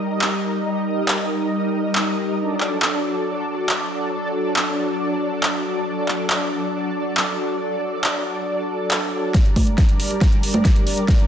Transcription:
0.10 analog synth pad G3 D#4 A#4 D#5
0.21 clap
0.32 analog synth pad G3 D#4 A#4 D#5
0.43 analog synth pad G3 D#4 A#4 D#5
0.65 analog synth pad G3 D#4 A#4 D#5
0.87 analog synth pad G3 D#4 A#4 D#5
1.08 analog synth pad G3 D#4 A#4 D#5, clap
1.19 analog synth pad G3 D#4 A#4 D#5
1.30 analog synth pad G3 D#4 A#4 D#5
1.52 analog synth pad G3 D#4 A#4 D#5
1.74 analog synth pad G3 D#4 A#4 D#5
1.84 analog synth pad G3 D#4 A#4 D#5
1.95 clap
2.06 analog synth pad G3 D#4 A#4 D#5
2.17 analog synth pad G3 D#4 A#4 D#5
2.39 analog synth pad F#3 D4 A4 D5
2.60 analog synth pad F#3 D4 A4 D5, clap
2.82 analog synth pad F#3 D4 A4 D5, clap
2.93 analog synth pad F#3 D4 A4 D5
3.04 analog synth pad F#3 D4 A4 D5
3.25 analog synth pad F#3 D4 A4 D5
3.47 analog synth pad F#3 D4 A4 D5
3.58 analog synth pad F#3 D4 A4 D5
3.69 clap
3.80 analog synth pad F#3 D4 A4 D5
3.91 analog synth pad F#3 D4 A4 D5
4.13 analog synth pad F#3 D4 A4 D5
4.34 analog synth pad F#3 D4 A4 D5
4.56 analog synth pad F#3 D4 A4 D5, clap
4.67 analog synth pad F#3 D4 A4 D5
4.78 analog synth pad F#3 D4 A4 D5
4.99 analog synth pad F#3 D4 A4 D5
5.21 analog synth pad F#3 D4 A4 D5
5.32 analog synth pad F#3 D4 A4 D5
5.43 clap
5.54 analog synth pad F#3 D4 A4 D5
5.65 analog synth pad F#3 D4 A4 D5
5.87 analog synth pad F#3 D4 A4 D5
6.08 analog synth pad F#3 D4 A4 D5, clap
6.30 analog synth pad F#3 D4 A4 D5, clap
6.41 analog synth pad F#3 D4 A4 D5
6.52 analog synth pad F#3 D4 A4 D5
6.74 analog synth pad F#3 D4 A4 D5
6.96 analog synth pad F#3 D4 A4 D5
7.06 analog synth pad F#3 D4 A4 D5
7.17 clap
7.28 analog synth pad F#3 D4 A4 D5
7.39 analog synth pad F#3 D4 A4 D5
7.61 analog synth pad F#3 D4 A4 D5
7.82 analog synth pad F#3 D4 A4 D5
8.04 analog synth pad F#3 D4 A4 D5, clap
8.15 analog synth pad F#3 D4 A4 D5
8.26 analog synth pad F#3 D4 A4 D5
8.47 analog synth pad F#3 D4 A4 D5
8.69 analog synth pad F#3 D4 A4 D5
8.80 analog synth pad F#3 D4 A4 D5
8.91 clap
9.02 analog synth pad F#3 D4 A4 D5
9.13 analog synth pad F#3 D4 A4 D5
9.34 analog synth pad G3 D4 A#4 D5, kick, snare, closed hi-hat
9.45 closed hi-hat
9.56 analog synth pad G3 D4 A#4 D5, kick, open hi-hat, high conga
9.67 closed hi-hat
9.78 analog synth pad G3 D4 A#4 D5, kick, snare, closed hi-hat
9.89 analog synth pad G3 D4 A#4 D5, closed hi-hat
10.00 analog synth pad G3 D4 A#4 D5, open hi-hat
10.11 closed hi-hat
10.21 analog synth pad G3 D4 A#4 D5, kick, snare, closed hi-hat
10.32 closed hi-hat
10.43 analog synth pad G3 D4 A#4 D5, open hi-hat
10.54 analog synth pad G3 D4 A#4 D5, closed hi-hat, high conga
10.65 kick, snare, closed hi-hat
10.76 analog synth pad G3 D4 A#4 D5, closed hi-hat
10.87 analog synth pad G3 D4 A#4 D5, open hi-hat
10.98 closed hi-hat
11.08 analog synth pad G3 D4 A#4 D5, kick, snare, closed hi-hat
11.19 closed hi-hat

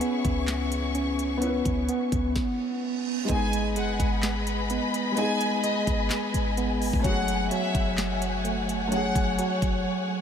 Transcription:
Already playing: grand piano B3 C#4 E4 G#4, tine electric piano C#4, string section G#4 C#5 E5 C#6
0.01 tine electric piano B3, closed hi-hat
0.25 808-style bass C#2, kick, closed hi-hat
0.48 snare, clap, closed hi-hat
0.72 closed hi-hat
0.95 tine electric piano C#4, closed hi-hat
1.19 closed hi-hat
1.37 grand piano B3 C#4
1.42 tine electric piano B3, grand piano E4, closed hi-hat
1.47 grand piano B4
1.65 808-style bass C#2, kick, closed hi-hat
1.89 tine electric piano B3, closed hi-hat
2.12 808-style bass C#2, kick, closed hi-hat
2.36 kick, snare, reverse cymbal
3.25 grand piano G#3 B3
3.29 808-style bass G#1, tine electric piano G#3, grand piano D#4, string section B4 D#5 G#5 B5, violin section G#5, kick, closed hi-hat
3.34 grand piano G#4
3.53 closed hi-hat
3.76 808-style bass F#1, tine electric piano G#3, violin section F#5, closed hi-hat
4.00 808-style bass G#1, kick, closed hi-hat
4.23 snare, clap, closed hi-hat
4.47 closed hi-hat
4.70 tine electric piano B3, closed hi-hat
4.94 closed hi-hat
5.12 grand piano G#3 B3
5.17 tine electric piano G#3, grand piano D#4, violin section G#5, closed hi-hat
5.21 grand piano G#4
5.41 closed hi-hat
5.63 tine electric piano G#3, violin section D#5, closed hi-hat
5.87 808-style bass G#1, kick, closed hi-hat
6.10 snare, clap, closed hi-hat
6.34 808-style bass G#1, closed hi-hat
6.57 tine electric piano B3, closed hi-hat
6.82 open hi-hat
6.93 808-style bass G#1, kick
6.99 grand piano A3 C#4
7.04 808-style bass F#1, tine electric piano F#3, grand piano F#4, string section C#5 F#5, violin section F#5, kick, closed hi-hat
7.09 grand piano G#4
7.28 closed hi-hat
7.51 tine electric piano F#3, violin section E5, closed hi-hat
7.75 808-style bass F#1, kick, closed hi-hat
7.98 snare, clap, closed hi-hat
8.22 closed hi-hat
8.45 tine electric piano A3, closed hi-hat
8.69 closed hi-hat
8.87 grand piano A3 C#4
8.92 tine electric piano F#3, grand piano F#4, violin section F#5, closed hi-hat
8.97 grand piano G#4
9.15 808-style bass F#1, kick, closed hi-hat
9.38 tine electric piano F#3, violin section C#5, closed hi-hat
9.62 808-style bass F#1, kick, closed hi-hat

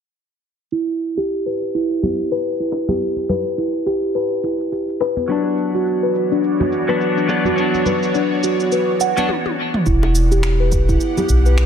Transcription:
0.72 steel tongue drum E4, shaker
1.01 shaker
1.17 steel tongue drum G4, high bongo, shaker
1.29 shaker
1.46 steel tongue drum B4
1.58 shaker
1.75 steel tongue drum E4, shaker
1.86 shaker
2.03 steel tongue drum G4, high conga, low conga
2.15 shaker
2.32 steel tongue drum B4, shaker
2.44 shaker
2.60 steel tongue drum E4, shaker
2.72 high bongo, shaker
2.88 steel tongue drum G4, high conga, low conga, shaker
3.00 shaker
3.16 high conga
3.29 steel tongue drum B4, low conga, shaker
3.46 shaker
3.58 steel tongue drum E4, shaker
3.86 steel tongue drum G4, shaker
4.03 shaker
4.15 steel tongue drum B4, shaker
4.43 steel tongue drum E4, shaker
4.60 shaker
4.72 steel tongue drum G4, shaker
4.89 shaker
5.01 steel tongue drum B4, high bongo, shaker
5.17 high conga, shaker
5.28 synth drone E3 B3 F#4 C#5 D5, clean electric guitar F#3 B3 D4, steel tongue drum D4, shaker
5.58 shaker
5.75 steel tongue drum F#4, high bongo, shaker
5.87 shaker
6.03 steel tongue drum B4
6.15 shaker
6.32 steel tongue drum D4, shaker
6.44 shaker
6.60 steel tongue drum F#4, high conga, low conga
6.72 shaker
6.88 clean electric guitar F#3 B3 D4, steel tongue drum B4, shaker
7.01 shaker
7.17 steel tongue drum D4, shaker
7.28 clean electric guitar F#3 B3 D4, high bongo, shaker
7.45 steel tongue drum F#4, high conga, low conga, shaker
7.56 clean electric guitar F#3 B3 D4, shaker
7.74 high conga, shaker
7.86 steel tongue drum B4, low conga, shaker
8.03 shaker
8.15 steel tongue drum D4, shaker
8.44 steel tongue drum F#4, shaker
8.60 shaker
8.72 steel tongue drum B4, shaker
9.00 steel tongue drum F#5, shaker
9.17 clean electric guitar F#3 B3 D4, high conga, shaker
9.29 high tom
9.46 high tom
9.74 mid tom
9.86 analog synth bass E1, synth drone E3 B3 G4 F#5, steel tongue drum E4, kick, shaker
10.03 high bongo
10.15 shaker
10.32 steel tongue drum G4, shaker
10.43 finger snap, shaker
10.60 steel tongue drum B4
10.72 kick, shaker
10.89 steel tongue drum E4, kick, shaker
11.01 shaker
11.17 steel tongue drum G4, high conga, low conga, shaker
11.29 analog synth bass B1, kick, shaker
11.46 steel tongue drum B4, shaker
11.58 finger snap, shaker

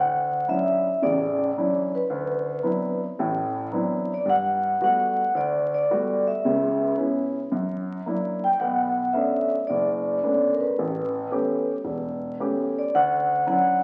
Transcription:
Already playing: grand piano D2, vibraphone F#5
0.48 grand piano F#3 C#4 D4 E4, vibraphone E5
1.02 grand piano A1 C#3, vibraphone D5
1.57 grand piano F#3 C#4 D4 E4
1.95 vibraphone B4
2.10 grand piano D2
2.63 grand piano F#3 B3 C4 D4 E4
3.19 grand piano A1 A2
3.72 grand piano F#3 B3 C4 D4 E4
4.14 vibraphone D5
4.25 grand piano G2
4.30 vibraphone F#5
4.81 grand piano G3 A3 B3 F#4, vibraphone F#5
5.35 grand piano D2, vibraphone D5
5.74 vibraphone D5
5.90 grand piano G3 A3 B3 F#4
6.27 vibraphone E5
6.45 grand piano C#2 C#3
6.98 grand piano B3 C#4 E4
7.52 grand piano F#2
8.06 grand piano F#3 A#3 D4 E4
8.44 vibraphone G5
8.60 grand piano B1 B2, vibraphone F#5
9.13 grand piano A3 B3 C#4 D4, vibraphone E5
9.67 grand piano F#1, vibraphone D5
10.24 grand piano A3 B3 C#4 D4
10.53 vibraphone A#4
10.60 vibraphone B4
10.79 grand piano A1
11.31 grand piano A3 B3 C#4 G4
11.85 grand piano E1
12.40 grand piano A3 B3 C#4 G4
12.79 vibraphone D5
12.95 grand piano D2, vibraphone F#5
13.47 grand piano F#3 C#4 D4 E4, vibraphone F#5

